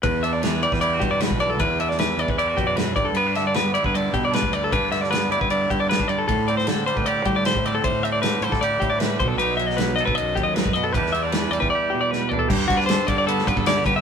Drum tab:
CC |----------------|----------------|----------------|----------------|
RD |x-x-x-x-x-x-x-x-|x-x-x-x-x-x-x-x-|x-x-x-x-x-x-x-x-|x-x-x-x-x-x-x-x-|
SD |----o--o----o---|---oo-------o---|--o-o-------o---|--ooo-------o---|
FT |----------------|----------------|----------------|----------------|
BD |o------o--o--o--|o------o--o---o-|-------o--o--o--|o------o--o--o--|

CC |----------------|----------------|----------------|----------------|
RD |x-x-x-x-x-x-x-x-|x-x-x-x-x-x-x-x-|x-x-x-x-x-x-x-x-|x-x-x-x---------|
SD |---oo-------o---|----o--o----o---|---oo-------o---|-o--o-------o---|
FT |----------------|----------------|----------------|--------------o-|
BD |o------o--o--o--|o------o--o---o-|-------o--o--o--|o------o--------|

CC |x---------------|
RD |--x-x-x-x-x-x-x-|
SD |--ooo----o--o---|
FT |----------------|
BD |o-o---o---oo--o-|